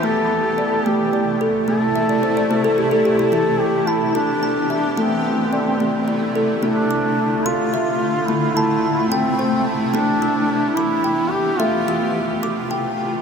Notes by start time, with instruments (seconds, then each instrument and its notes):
Already playing: kalimba E5 A5
0.03 ambient pad C3 A3 E4, kalimba A3, duduk A4
0.58 kalimba D5
0.86 kalimba A3, duduk G4
1.13 kalimba D5
1.41 kalimba A4
1.68 kalimba A3, duduk A4
1.96 kalimba E5
2.09 kalimba D5
2.23 kalimba C5
2.37 kalimba D5
2.51 kalimba A3 C5
2.64 kalimba A4
2.78 kalimba G4
2.91 kalimba A4
3.05 kalimba G4
3.19 kalimba E4
3.32 kalimba E3 E4, ambient pad E3 B3 G4, duduk A4
3.60 duduk G4
3.87 duduk E4, kalimba A5
4.15 duduk D4, kalimba E4
4.43 kalimba A5
4.70 kalimba E5
4.97 ambient pad C3 A3 E4, kalimba A3, duduk C4
5.53 kalimba D5
5.80 kalimba A3
6.08 kalimba D5
6.35 kalimba A4
6.62 ambient pad D3 A3 F4, kalimba A3 D4, duduk D4
6.91 kalimba D6
7.46 duduk F4, kalimba C6
7.74 kalimba E5
8.25 kalimba A3, duduk E4
8.30 ambient pad C3 E4
8.54 duduk E4, kalimba A5
9.08 duduk C4, kalimba G5
9.39 kalimba C5
9.92 ambient pad E3 G4, kalimba A3 E4, duduk D4
9.96 ambient pad B3
10.22 kalimba E6
10.75 duduk E4, kalimba D6
11.04 kalimba G5
11.30 duduk G4
11.59 ambient pad C3 A3 F4, kalimba A3 E5, duduk F4
11.88 kalimba E6
12.43 kalimba D6
12.71 kalimba G5